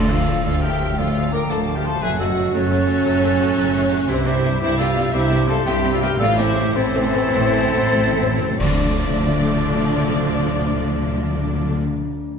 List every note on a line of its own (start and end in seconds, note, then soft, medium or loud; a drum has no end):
0.00 0.39 D2 medium
0.00 0.39 D2 loud
0.00 0.41 A2 medium
0.00 0.41 F3 medium
0.00 0.11 F4 loud
0.00 0.13 A4 loud
0.09 0.16 F3 medium
0.09 0.16 A3 medium
0.09 0.43 F4 medium
0.09 0.44 F4 medium
0.09 0.43 A4 loud
0.09 0.44 D5 medium
0.09 0.44 F5 medium
0.27 0.34 F3 medium
0.27 0.34 A3 medium
0.43 0.91 D2 medium
0.43 0.92 D2 medium
0.43 0.95 A2 medium
0.43 0.96 F3 medium
0.43 0.52 F3 medium
0.43 0.52 A3 medium
0.43 0.52 F4 loud
0.43 0.63 F4 loud
0.43 0.60 A4 loud
0.43 0.51 D5 loud
0.43 0.52 F5 loud
0.61 0.69 F3 medium
0.61 0.70 A3 medium
0.61 0.97 G4 medium
0.61 0.96 A#4 loud
0.61 0.99 E5 medium
0.61 0.97 G5 loud
0.81 0.88 F3 medium
0.81 0.88 A3 medium
0.97 1.44 D2 medium
0.97 1.49 A2 medium
0.97 1.05 F3 medium
0.97 1.49 F3 medium
0.97 1.05 A3 medium
0.97 1.32 F4 medium
0.97 1.33 F4 medium
0.97 1.32 A4 medium
0.97 1.36 D5 medium
0.97 1.32 F5 medium
1.15 1.22 F3 medium
1.15 1.22 A3 medium
1.32 1.39 F3 medium
1.32 1.39 A3 medium
1.32 1.40 A#4 medium
1.32 1.40 A#4 loud
1.32 1.49 D5 loud
1.32 1.52 G5 loud
1.32 1.49 A#5 loud
1.49 1.95 D2 medium
1.49 1.96 D2 medium
1.49 2.00 A2 medium
1.49 1.56 F3 medium
1.49 2.01 F3 medium
1.49 1.56 A3 medium
1.49 1.62 A4 medium
1.49 1.58 A4 medium
1.49 1.75 D5 medium
1.49 1.78 F5 medium
1.49 1.76 A5 loud
1.67 1.74 F3 medium
1.67 1.74 A3 medium
1.76 1.84 G4 medium
1.76 1.87 A#4 medium
1.76 1.84 E5 medium
1.76 1.85 G5 medium
1.84 1.92 F3 medium
1.84 1.91 A3 medium
1.84 2.02 A4 loud
1.84 2.03 C5 medium
1.84 2.03 F5 loud
1.84 2.01 A5 loud
2.01 2.47 F#1 medium
2.01 2.47 F#2 loud
2.01 2.51 A2 medium
2.01 2.51 F#3 medium
2.01 2.08 F#3 medium
2.01 2.08 A3 medium
2.01 2.18 G#4 loud
2.01 2.19 G#4 loud
2.01 2.19 B4 loud
2.01 2.18 E5 loud
2.01 2.19 G#5 loud
2.18 2.26 F#3 medium
2.18 2.25 A3 medium
2.18 2.52 F#4 medium
2.18 2.53 F#4 loud
2.18 2.52 A4 loud
2.18 2.52 D#5 medium
2.18 2.53 F#5 loud
2.37 2.44 F#3 medium
2.37 2.44 A3 medium
2.52 2.99 F#1 medium
2.52 3.00 F#2 medium
2.52 4.06 A2 medium
2.52 4.06 F#3 medium
2.52 2.61 F#3 medium
2.52 2.61 A3 medium
2.52 4.09 C#4 loud
2.52 4.10 F#4 medium
2.52 3.83 A4 loud
2.52 4.07 C#5 loud
2.71 2.78 F#3 medium
2.71 2.78 A3 medium
2.88 2.95 F#3 medium
2.88 2.95 A3 medium
3.05 3.51 F#1 medium
3.05 3.52 F#2 loud
3.05 3.12 F#3 medium
3.05 3.12 A3 medium
3.22 3.29 F#3 medium
3.22 3.30 A3 medium
3.40 3.47 F#3 medium
3.40 3.47 A3 medium
3.57 4.03 F#1 medium
3.57 4.03 F#2 loud
3.57 3.64 F#3 medium
3.57 3.64 A3 medium
3.74 3.81 F#3 medium
3.74 3.81 A3 medium
3.91 3.99 F#3 medium
3.91 3.99 A3 medium
4.08 4.55 C2 medium
4.08 4.58 G2 medium
4.08 4.55 C3 loud
4.08 4.15 G3 medium
4.08 4.59 G3 medium
4.08 4.26 C4 loud
4.08 4.16 C4 medium
4.08 4.27 C4 loud
4.08 4.27 E4 loud
4.08 4.25 G4 loud
4.08 4.27 C5 loud
4.26 4.33 G3 medium
4.26 4.33 C4 medium
4.26 4.60 E4 medium
4.26 4.61 E4 loud
4.26 4.60 G4 loud
4.26 4.60 C5 loud
4.26 4.60 E5 loud
4.43 4.51 G3 medium
4.43 4.50 C4 medium
4.59 5.07 C2 loud
4.59 5.11 G2 medium
4.59 5.07 C3 loud
4.59 5.11 G3 medium
4.59 4.68 G3 medium
4.59 4.69 C4 medium
4.59 4.78 E4 loud
4.59 4.77 G4 loud
4.59 4.77 C5 loud
4.59 4.78 E5 loud
4.78 4.86 G3 medium
4.78 4.86 C4 medium
4.78 5.13 F4 loud
4.78 5.14 F4 loud
4.78 5.12 A4 loud
4.78 5.12 D5 loud
4.78 5.13 F5 loud
4.97 5.03 G3 medium
4.97 5.04 C4 medium
5.12 5.59 C2 loud
5.12 5.64 G2 medium
5.12 5.60 C3 loud
5.12 5.64 G3 medium
5.12 5.21 G3 medium
5.12 5.21 C4 medium
5.12 5.48 E4 loud
5.12 5.49 G4 loud
5.12 5.47 C5 loud
5.12 5.47 E5 loud
5.31 5.38 G3 medium
5.31 5.38 C4 medium
5.48 5.55 G3 medium
5.48 5.55 C4 medium
5.48 5.56 A4 loud
5.48 5.66 A4 loud
5.48 5.65 C5 loud
5.48 5.65 F5 loud
5.48 5.56 A5 loud
5.65 6.13 C2 loud
5.65 6.18 G2 loud
5.65 6.14 C3 loud
5.65 6.19 G3 loud
5.65 5.73 G3 medium
5.65 5.73 C4 medium
5.65 5.78 G4 medium
5.65 5.92 G4 loud
5.65 5.91 C5 loud
5.65 5.92 E5 loud
5.65 5.75 G5 loud
5.84 5.91 G3 medium
5.84 5.91 C4 medium
5.92 6.02 F4 loud
5.92 5.96 A4 medium
5.92 6.02 D5 loud
5.92 6.03 F5 loud
6.01 6.10 G3 medium
6.01 6.10 C4 medium
6.01 6.09 G4 loud
6.01 6.20 G4 loud
6.01 6.18 A#4 loud
6.01 6.09 E5 loud
6.01 6.20 G5 loud
6.18 6.69 A1 loud
6.18 6.73 A2 loud
6.18 6.69 A2 loud
6.18 6.27 A2 soft
6.18 6.74 E3 loud
6.18 6.28 A3 medium
6.18 6.28 C4 loud
6.18 6.38 F4 loud
6.18 6.27 A4 loud
6.18 6.25 D5 loud
6.18 6.38 F5 loud
6.37 6.46 A3 medium
6.37 6.46 C4 medium
6.37 6.75 E4 loud
6.37 6.76 E4 loud
6.37 6.77 G4 loud
6.37 6.77 C5 loud
6.37 6.75 E5 loud
6.44 6.50 A2 soft
6.51 6.58 A2 medium
6.56 6.65 A2 medium
6.56 6.64 A3 medium
6.56 6.64 C4 medium
6.66 6.73 A2 medium
6.74 7.26 A1 loud
6.74 6.81 A2 medium
6.74 8.35 A2 loud
6.74 7.26 A2 loud
6.74 8.35 E3 loud
6.74 6.83 A3 loud
6.74 6.83 C4 medium
6.74 8.61 C4 loud
6.74 8.58 C4 loud
6.74 8.44 E4 loud
6.74 8.59 A4 loud
6.74 8.57 C5 loud
6.83 6.89 A2 medium
6.90 6.97 A2 medium
6.90 7.02 A3 medium
6.90 7.02 C4 medium
6.98 7.06 A2 medium
7.07 7.14 A2 medium
7.13 7.23 A2 medium
7.13 7.22 A3 medium
7.13 7.21 C4 medium
7.24 7.31 A2 medium
7.32 7.87 A1 loud
7.32 7.39 A2 medium
7.32 7.87 A2 loud
7.32 7.41 A3 medium
7.32 7.41 C4 medium
7.41 7.49 A2 medium
7.52 7.60 A3 medium
7.52 7.61 C4 medium
7.58 7.67 A2 medium
7.68 7.75 A2 medium
7.73 7.84 A2 loud
7.73 7.81 A3 medium
7.73 7.81 C4 medium
7.86 7.93 A2 loud
7.93 8.53 A1 loud
7.93 8.53 A2 loud
7.93 8.02 A2 loud
7.93 8.01 A3 medium
7.93 8.02 C4 medium
8.03 8.11 A2 loud
8.13 8.21 A2 loud
8.13 8.24 A3 medium
8.13 8.24 C4 medium
8.23 8.31 A2 loud
8.32 8.40 A2 loud
8.38 8.50 A2 loud
8.38 8.46 A3 medium
8.38 8.46 C4 medium
8.51 8.60 A2 loud
8.59 11.77 D2 medium
8.59 11.77 A2 medium
8.59 11.77 D3 loud
8.59 8.68 D3 loud
8.59 11.76 F3 medium
8.59 11.78 F3 medium
8.59 11.76 A3 medium
8.59 11.78 D4 medium
8.59 11.76 D5 loud
8.59 11.77 D5 medium
8.59 concert bass drum medium
8.59 crash medium
8.68 8.75 D3 medium
8.75 8.82 D3 medium
8.83 8.90 D3 medium
8.90 8.97 D3 medium
8.98 9.05 D3 medium
9.06 9.13 D3 loud
9.13 9.20 D3 medium
9.20 9.27 D3 loud
9.27 9.34 D3 loud
9.35 9.41 D3 loud
9.41 9.49 D3 medium
9.49 9.56 D3 medium
9.56 9.64 D3 medium
9.64 9.72 D3 loud
9.72 9.80 D3 medium
9.80 9.87 D3 medium
9.88 9.95 D3 medium
9.95 10.02 D3 loud
10.02 10.09 D3 medium
10.09 10.16 D3 loud
10.16 10.24 D3 medium
10.24 10.31 D3 loud
10.32 10.39 D3 medium
10.39 10.47 D3 loud
10.47 10.54 D3 loud
10.54 10.61 D3 medium
10.61 10.68 D3 medium
10.68 10.76 D3 loud
10.76 10.83 D3 medium
10.83 10.91 D3 medium
10.91 10.98 D3 medium
10.98 11.05 D3 loud
11.06 11.14 D3 medium
11.14 11.21 D3 medium
11.21 11.28 D3 medium
11.28 11.36 D3 loud
11.36 11.43 D3 medium
11.44 11.50 D3 medium
11.50 11.57 D3 medium
11.57 11.64 D3 medium
11.64 11.71 D3 medium
11.71 11.79 D3 loud